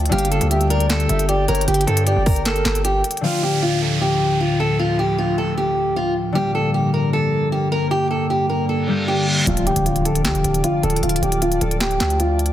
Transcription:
Already playing: F3 A3
0.06 D3, closed hi-hat
0.11 G1 G3 A#3 G4 D5 F5 G5, closed hi-hat
0.18 closed hi-hat
0.25 closed hi-hat
0.31 A4, closed hi-hat
0.41 D2, closed hi-hat
0.51 G4 E5, closed hi-hat
0.61 closed hi-hat
0.70 A#4 D5, closed hi-hat
0.80 closed hi-hat
0.90 A4, snare, clap, closed hi-hat
1.00 closed hi-hat
1.09 G1 E5, closed hi-hat
1.19 closed hi-hat
1.29 G4 D5, closed hi-hat
1.48 G1 A#4 C#5, closed hi-hat
1.55 closed hi-hat
1.61 closed hi-hat
1.68 G1 G4, closed hi-hat
1.74 closed hi-hat
1.81 closed hi-hat
1.87 G2 A4, closed hi-hat
1.97 closed hi-hat
2.07 G4 D5, closed hi-hat
2.16 G1
2.26 A#4, kick, open hi-hat
2.36 closed hi-hat
2.45 A4 A#4, snare, clap, closed hi-hat
2.56 closed hi-hat
2.65 G1, snare, clap, closed hi-hat
2.75 closed hi-hat
2.85 G4, closed hi-hat
3.04 closed hi-hat
3.11 closed hi-hat
3.17 D3, closed hi-hat
3.23 D2 A2 F3 A3 F4, downlifter
3.43 G4
3.62 F4
3.82 A4
4.01 G4
4.40 F4
4.60 A4
4.79 F4
4.99 G4
5.18 F4
5.38 A4
5.58 G4
5.96 F4
6.32 G2 D3 G3 A#3 G4
6.38 G4
6.55 A4
6.74 G4
6.94 A#4
7.13 A4
7.52 G4
7.72 A#4
7.91 G4
8.11 A4
8.30 G4
8.49 A#4
8.69 A4, reverse cymbal
8.87 D3 G3 A#3 G4
9.08 G4
9.44 D1 D3 F3 A3 F4 D5 A5, closed hi-hat, impact
9.50 F4
9.57 closed hi-hat
9.67 G4, closed hi-hat
9.76 D1, closed hi-hat
9.86 F4, closed hi-hat
9.96 closed hi-hat
10.05 A4, closed hi-hat
10.15 closed hi-hat
10.25 D2 G4, snare, clap, closed hi-hat
10.35 D1, closed hi-hat
10.44 D1, closed hi-hat
10.54 closed hi-hat
10.64 F4, closed hi-hat
10.83 D1 A4, closed hi-hat
10.90 closed hi-hat
10.96 closed hi-hat
11.03 D1 F4, closed hi-hat
11.09 closed hi-hat
11.16 closed hi-hat
11.22 D1 G4, closed hi-hat
11.32 closed hi-hat
11.42 F4, closed hi-hat
11.52 closed hi-hat
11.61 D1 A4, closed hi-hat
11.71 closed hi-hat
11.80 G4, snare, clap, closed hi-hat
11.91 closed hi-hat
12.00 D2, snare, clap, closed hi-hat
12.10 closed hi-hat
12.20 F4, closed hi-hat
12.39 closed hi-hat
12.46 closed hi-hat

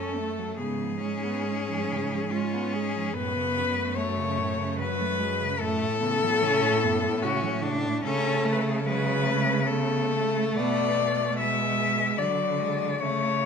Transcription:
Already playing: F#2 C#4 A4
0.16 A3
0.38 F#3
0.57 G#2 C#3 B3 G#4
0.80 F3
1.01 G#3 C#4
1.25 B3
1.46 G#3
1.68 F3
1.91 C#3
2.12 F3
2.31 G#3 C#4 F4
2.54 B3
2.73 G#3 G#4
2.95 F3
3.14 F#2 A2 B3 B4
3.37 C#3
3.57 F#3
3.77 A3
3.96 F#3 A3 C#5
4.17 C#3
4.38 A2
4.57 C#3
4.79 F#3 B4
5.00 A3
5.19 F#3 G#3
5.40 C#3
5.60 F#2 A2 A3 A4
5.82 A2
6.00 C#3 B3
6.23 F#3
6.41 C#3 C#4
6.64 A2
6.81 F#2 B3
7.04 A2
7.22 C#3 C#4 F#4
7.43 F#3
7.62 C#3 D4
7.85 A2
8.04 C#3 A3 C#4 A4
8.45 A3
8.53 B4
8.61 A4
8.69 G#4
8.78 A4
8.85 F#3 G#3 B4
9.26 G#3 A3
9.67 A3 B3 A4
10.12 A3
10.56 B2 B3 D5
10.98 A3
11.39 G#3 E5
12.18 D3 F#3 D5
12.60 G#3
13.01 C#3 A3 C#5

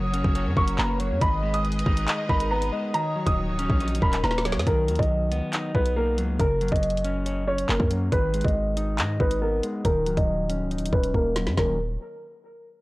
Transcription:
Already playing: F#1 C#3 F#3 F#4 A#4 C#5 D#6
0.14 C#4, closed hi-hat
0.24 F#1, kick
0.35 C#5, closed hi-hat
0.46 F#2
0.57 F#1 C#4 A#4 C#6, kick
0.68 closed hi-hat
0.78 F#1 A#3 B4 A#5, clap
1.00 F#3 C#5, closed hi-hat
1.11 F#2
1.21 G#1 D#3 G#3 G#4 B4 D#5 B5, kick, closed hi-hat
1.43 G#3
1.54 D#6, closed hi-hat
1.65 closed hi-hat
1.72 closed hi-hat
1.79 closed hi-hat
1.86 G#1 D#4, kick
1.97 closed hi-hat
2.08 D#5, clap, closed hi-hat
2.29 G#1 D#4 A#4 B5, kick
2.40 closed hi-hat
2.51 B3 B4 A#5
2.62 closed hi-hat
2.72 G#3 D#5
2.94 D#3 D#4 F#4 C#5 D#5 A#5, closed hi-hat
3.16 F#3
3.26 D#1 D#6, kick, closed hi-hat
3.48 C#1
3.59 D#1 C#4, closed hi-hat
3.70 A#1, kick
3.80 D#4, closed hi-hat
3.88 closed hi-hat
3.95 closed hi-hat
4.02 D#1 C#4 A#4 B5, kick
4.13 clap, closed hi-hat
4.24 D#1 A#3 B4 A#5, snare
4.31 snare
4.38 snare
4.45 F#3 C#5, snare, closed hi-hat
4.52 F#2, snare
4.59 snare
4.67 B1 D#3 A#4, kick, closed hi-hat
4.88 D#2 F#3, closed hi-hat
4.96 B1 D#5, kick, closed hi-hat
5.03 closed hi-hat
5.31 C#2 B3, closed hi-hat
5.53 D#4, clap, closed hi-hat
5.75 B1 B3 B4, kick
5.86 closed hi-hat
5.96 A#3 A#4
6.18 C#2 F#3, closed hi-hat
6.39 F#1 C#3 A#4, kick, closed hi-hat
6.61 F#3, closed hi-hat
6.68 F#1 D#5, kick, closed hi-hat
6.76 closed hi-hat
6.83 closed hi-hat
6.90 closed hi-hat
6.97 closed hi-hat
7.04 C#4, closed hi-hat
7.26 C#5, closed hi-hat
7.47 C#4 C#5
7.58 closed hi-hat
7.69 F#1 A#3 A#4, clap
7.80 F#2, kick
7.91 F#3, closed hi-hat
8.12 G#1 D#3 B4, kick, closed hi-hat
8.34 G#3, closed hi-hat
8.41 G#1 D#5, kick, closed hi-hat
8.48 closed hi-hat
8.77 D#4, closed hi-hat
8.98 G#2 D#5, clap, closed hi-hat
9.20 G#1 D#4 B4, kick
9.31 closed hi-hat
9.42 B3 A#4
9.63 G#3, closed hi-hat
9.85 D#1 D#3 A#4, kick, closed hi-hat
10.06 C#1 F#3, closed hi-hat
10.17 D#1 D#5, kick, closed hi-hat
10.50 C#4, closed hi-hat
10.60 C#1
10.71 D#4, closed hi-hat
10.76 D#1, closed hi-hat
10.86 closed hi-hat
10.93 D#1 C#4 B4, kick
11.03 closed hi-hat
11.14 D#1 A#3 A#4, kick
11.36 F#3, snare, closed hi-hat
11.47 F#2, snare
11.57 D#1 D#3 F#3 A#3 C#4 A#4, kick, snare

